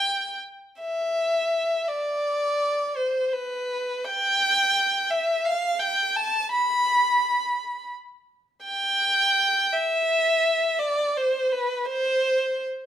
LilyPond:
\new Staff \with { instrumentName = "Violin" } { \time 6/8 \key g \mixolydian \tempo 4. = 56 g''8 r8 e''4. d''8~ | d''4 c''8 b'4 g''8~ | g''4 e''8 f''8 g''8 a''8 | b''2 r4 |
g''4. e''4. | d''8 c''8 b'8 c''4 r8 | }